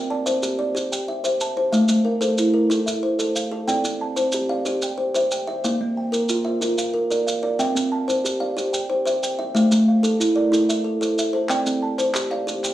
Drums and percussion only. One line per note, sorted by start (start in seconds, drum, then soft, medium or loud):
0.26 maracas medium
0.43 maracas medium
0.76 maracas medium
0.93 maracas medium
1.25 maracas medium
1.41 maracas medium
1.73 maracas medium
1.88 maracas medium
2.22 maracas medium
2.38 maracas medium
2.71 maracas medium
2.87 maracas medium
3.19 maracas medium
3.36 maracas medium
3.68 maracas medium
3.85 maracas medium
4.17 maracas medium
4.32 maracas medium
4.66 maracas medium
4.82 maracas medium
5.15 maracas medium
5.31 maracas medium
5.64 maracas medium
6.14 maracas medium
6.29 maracas medium
6.62 maracas medium
6.78 maracas medium
7.11 maracas medium
7.28 maracas medium
7.60 maracas medium
7.77 maracas medium
8.09 maracas medium
8.25 maracas medium
8.58 maracas medium
8.74 maracas medium
9.07 maracas medium
9.23 maracas medium
9.56 maracas medium
9.72 maracas medium
10.04 maracas medium
10.21 maracas medium
10.53 maracas medium
10.70 maracas medium
11.02 maracas medium
11.18 maracas medium
11.49 clap medium
11.49 maracas medium
11.67 maracas medium
11.99 clap soft
11.99 maracas medium
12.14 clap medium
12.14 maracas medium
12.31 clap soft
12.48 maracas medium
12.64 clap soft
12.64 maracas medium